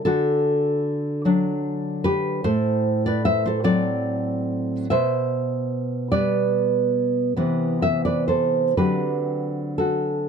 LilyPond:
\new Staff \with { instrumentName = "Nylon-string guitar" } { \time 6/8 \key d \major \tempo 4. = 49 << { <fis' a'>2~ <fis' a'>8 <g' b'>8 | \key g \major <a' c''>8. <b' d''>16 <c'' e''>16 <a' c''>16 <a' d''>4. | <c'' e''>4. <b' d''>4 r8 | r8 <c'' e''>16 <b' d''>16 <a' c''>8 <g' b'>4 <fis' a'>8 | } \\ { d4. <fis d'>4. | a,4. <fis c'>4. | b,4. <g b>4. | <c e b>4. <d fis c'>4. | } >> }